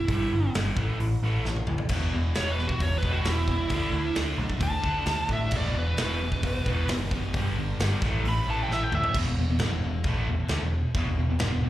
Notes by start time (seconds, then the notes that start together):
Already playing: E4
0.08 G1 G2 D3 G3, kick, open hi-hat
0.33 G1 G2 D3
0.54 G1 G2 D3 G3, snare, open hi-hat
0.76 A1 A2 E3 A3, kick
1.00 A1 A2 E3, open hi-hat
1.23 A1 A2 E3 A3
1.45 A1 A2 E3, snare
1.56 high tom
1.67 D2 A2 E3, mid tom
1.78 floor tom
1.89 E1 E2 B2 E3, kick, splash, crash
2.13 E1 E2 B2 E3
2.35 E1 E2 B2 E3 C#5, snare, open hi-hat
2.52 B4
2.58 E2 B2 E3, snare
2.67 F#4, kick
2.80 E1 E2 B2 E3 C#5, kick, open hi-hat
2.98 B4
3.03 E1 E2 B2 E3, kick
3.12 F#4
3.25 E1 E2 B2 E3, snare, open hi-hat
3.29 E4
3.48 E2 B2 E3, kick
3.69 D2 D3 A3 D4, kick, open hi-hat
3.92 D2 D3 A3 D4
4.15 D2 D3 A3 D4, snare, open hi-hat
4.38 B1 D3 A3 D4
4.50 kick
4.60 D2 D3 A3 D4 A5, kick, open hi-hat
4.82 D2 D3 A3 D4, kick
5.06 D2 D3 A3 D4, snare, open hi-hat
5.29 A2 D3 A3 D4, kick
5.33 E5
5.51 E1 E2 B2 E3, kick, crash
5.57 D5
5.75 E1 E2 B2 E3 B4
5.97 E1 E2 B2 E3, snare, open hi-hat
6.02 B4
6.22 E2 B2 E3
6.32 kick
6.43 E1 E2 B2 E3, kick, open hi-hat
6.66 E1 E2 B2 E3, kick
6.88 F#1 E2 B2 E3, snare, open hi-hat
7.11 E3, kick
7.16 E2 B2
7.33 G1 G2 D3 G3, kick, open hi-hat
7.57 G1 G2 D3 G3
7.80 G1 G2 D3 G3, snare, open hi-hat
8.02 A1 A2 E3 A3, kick, snare
8.24 A1 A2 E3 A3, open hi-hat
8.29 B5
8.47 A1 A2 E3 A3 A5
8.63 G5
8.69 A1 A2 E3 A3, snare
8.73 E5
8.83 G5
8.92 D2 A2 E3 A3 E5, mid tom
9.04 floor tom
9.14 E1 E2 B2, kick, crash
9.26 E1 E2 B2
9.37 E1 E2 B2
9.48 E1 E2 B2
9.59 G1 G2, snare, crash
9.63 D3
9.71 E1 E2 B2
9.83 E1 E2 B2
10.04 A1 A2 E3 A3, kick, crash
10.26 E1 E2 B2
10.37 muted picked electric bass stroke, muted distorted electric guitar stroke, muted overdriven electric guitar stroke
10.48 D2 D3 A3, snare, crash
10.60 E1 E2 B2
10.95 E1 E2 B2, kick, crash
11.05 E1 E2
11.09 B2
11.16 E1 E2 B2
11.28 E1 E2 B2
11.39 G1 G2 D3, snare, crash
11.51 E1 E2 B2
11.62 E1 E2 B2